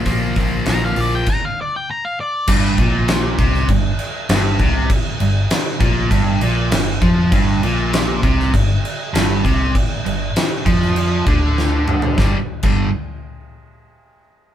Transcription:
<<
  \new Staff \with { instrumentName = "Lead electric guitar" } { \time 4/4 \key g \minor \tempo 4 = 99 r4 bes''16 f''16 d''16 g''16 bes''16 f''16 d''16 g''16 bes''16 f''16 d''8 | r1 | r1 | r1 |
r1 | r1 | }
  \new Staff \with { instrumentName = "Overdriven electric guitar" } { \clef bass \time 4/4 \key g \minor <bes, f bes>8 <bes, f bes>8 <bes, f bes>8 <bes, f bes>8 r2 | g,8 bes,4 c8 g,8 r8 g,8 c8 | r8 g,8 r8 bes,8 g,8 bes,8 g,8 f8 | g,8 bes,4 c8 g,8 r8 g,8 c8 |
r8 g,8 r8 f4 d4. | <g, d g>16 r8 <g, d g>8 r2 r8. | }
  \new Staff \with { instrumentName = "Fingered electric bass" } { \clef bass \time 4/4 \key g \minor bes,,8 bes,,8 bes,,8 bes,,8 r2 | g,,8 bes,,4 c,8 g,,8 r8 g,,8 c,8 | r8 g,,8 r8 bes,,8 g,,8 bes,,8 g,,8 f,8 | g,,8 bes,,4 c,8 g,,8 r8 g,,8 c,8 |
r8 g,,8 r8 f,4 d,4. | g,,16 r8 g,,8 r2 r8. | }
  \new DrumStaff \with { instrumentName = "Drums" } \drummode { \time 4/4 <hho bd>8 <hho bd>8 <hho sn>8 hho8 <cymc bd>4 r4 | <cymc bd>8 <cymc bd>8 <cymc sn>8 <cymc bd>16 sn16 <cymc bd>8 cymc8 <cymc sn>8 <cymc bd>8 | <cymc bd>8 cymc8 <cymc sn>8 <cymc bd>8 <cymc bd>8 cymc8 <cymc sn>8 <cymc bd>8 | <cymc bd>8 cymc8 <cymc sn>8 <cymc bd>16 sn16 <cymc bd>8 cymc8 <cymc sn>8 <cymc bd>8 |
<cymc bd>8 cymc8 <cymc sn>8 <cymc bd>16 sn16 cymc8 <cymc bd>8 sn8 toml16 tomfh16 | <bd sn>8. <cymc bd>16 r4 r4 r4 | }
>>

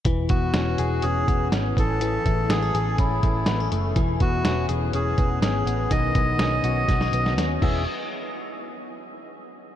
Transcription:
<<
  \new Staff \with { instrumentName = "Melodica" } { \time 4/4 \key e \major \tempo 4 = 123 r8 fis'4. gis'4 r8 a'8~ | a'4 gis'4 e'4. r8 | r8 fis'4 r8 gis'4 gis'4 | dis''2. r8 e''8 |
r1 | }
  \new Staff \with { instrumentName = "Clean electric guitar" } { \time 4/4 \key e \major e8 b8 cis'8 gis'8 cis'8 b8 cis'8 e8 | e8 a8 b16 cis'16 gis'8 cis'8 a8 b16 cis'16 a8 | e8 b8 cis'8 gis'8 cis'8 b8 cis'8 b8 | dis8 b8 cis'8 fis'8 b16 cis'16 b8 cis'8 <e b cis' gis'>8 |
r1 | }
  \new Staff \with { instrumentName = "Picked electric bass" } { \clef bass \time 4/4 \key e \major e,,8 e,,8 e,,8 e,,8 e,,8 e,,8 gis,,8 a,,8~ | a,,8 a,,8 a,,8 a,,8 a,,8 a,,8 a,,8 fis,,8 | e,,8 e,,8 e,,8 e,,8 e,,8 e,,8 gis,,8 a,,8 | b,,8 b,,8 b,,8 b,,8 b,,8 b,,8 dis,8 e,,8 |
r1 | }
  \new DrumStaff \with { instrumentName = "Drums" } \drummode { \time 4/4 <hh bd>8 <hh bd>8 <hh sn>8 hh8 hh8 <hh bd>8 <hh sn>8 <hh bd>8 | hh8 <hh bd>8 <hh sn>8 hh8 <hh bd>8 <hh bd>8 <hh sn>8 hh8 | <hh bd>8 <hh bd>8 <hh sn>8 hh8 hh8 <hh bd>8 <hh sn>8 hh8 | <hh bd>8 <hh bd>8 <hh sn>8 hh8 <hh bd sn>16 sn16 hh16 sn16 <hh sn>8 <cymc bd>8 |
r4 r4 r4 r4 | }
>>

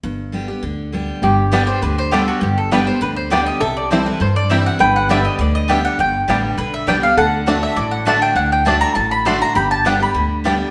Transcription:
<<
  \new Staff \with { instrumentName = "Mandolin" } { \time 4/4 \key g \major \tempo 4 = 202 r1 | r4. c''8 b'8 c''8 a'8 fis'8 | g'8 a'8 b'8 c''8 b'8 c''8 d''8 ees''8 | e''8 d''8 c''8 b'8 c''8 d''8 e''8 fis''8 |
g''8 fis''8 e''8 ees''8 d''8 ees''8 e''8 fis''8 | g''4 r4 b'8 e''8 g''8 f''8 | fis''4. e''8 d''8 fis''8 a''8 g''8 | fis''8 g''8 a''8 bes''8 a''8 b''8 c'''8 bes''8 |
b''8 a''8 fis''8 b''2~ b''16 r16 | }
  \new Staff \with { instrumentName = "Mandolin" } { \time 4/4 \key g \major r1 | r4 <b g' d'' g''>8 r4. <b g' d'' g''>8 r8 | r4 <b g' d'' g''>8 r4. <b g' d'' g''>8 r8 | r4 <c' e' c'' g''>8 r4. <c' e' c'' g''>8 r8 |
r4 <b g' d'' g''>8 r4. <b g' d'' g''>8 r8 | r4 <b g' d'' g''>8 r4. <b g' d'' g''>8 r8 | r4 <a fis' d'' fis''>8 r4. <a fis' d'' fis''>8 r8 | r4 <a fis' d'' fis''>8 r4. <a fis' d'' fis''>8 r8 |
r4 <b g' d'' g''>8 r4. <b g' d'' g''>8 r8 | }
  \new Staff \with { instrumentName = "Resonator guitar played with a steel bar" } { \time 4/4 \key g \major r1 | g'1~ | g'1 | a'1 |
b'1~ | b'1 | a'1~ | a'1 |
g'2.~ g'8 r8 | }
  \new Staff \with { instrumentName = "Five-string banjo" } { \time 4/4 \key g \major r1 | r4 <g b d'>8 r4. <g b d'>8 r8 | r4 <g b d'>8 r4. <g b d'>8 r8 | r4 <g c' e'>8 r4. <g c' e'>8 r8 |
r4 <g b d'>8 r4. <g b d'>8 r8 | r4 <g b d'>8 r4. <g b d'>8 r8 | r4 <a d'>8 r4. <a d'>8 r8 | r4 <a d'>8 r4. <a d'>8 r8 |
r4 <g b d'>8 r4. <g b d'>8 r8 | }
  \new Staff \with { instrumentName = "Steel-string acoustic guitar" } { \time 4/4 \key g \major << { r4 <d g b g'>8 <b g'>8 r4 <d g b g'>4 | r4 <d g b g'>8 <b g'>8 r4 <d g b g'>4 | r4 <d g b g'>8 <b g'>8 r4 <d g b g'>4 | r4 <e g c' e'>8 <c' e'>8 r4 <e g c' e'>4 |
r4 <d g b g'>4 r4 <d g b g'>4 | r4 <d g b g'>4 r4 <d g b g'>8 <b g'>8 | r4 <d a d' fis'>4 r4 <d a d' fis'>4 | r4 <d a d' fis'>4 r4 <d a d' fis'>8 <d' fis'>8 |
r4 <d g b g'>8 <b g'>8 r4 <d g b g'>4 | } \\ { g,2 d2 | g,2 d2 | g,2 d2 | c2 g,2 |
g,2 d2 | g,2 d2 | d2 a,2 | d2 a,2 |
g,2 d2 | } >> }
  \new Staff \with { instrumentName = "Upright bass" } { \clef bass \time 4/4 \key g \major g,,2 d,2 | g,,2 d,2 | g,,2 d,2 | c,2 g,2 |
g,,2 d,2 | g,,4 a,,4 b,,4 c,4 | d,2 a,,2 | d,2 a,,2 |
g,,2 d,2 | }
>>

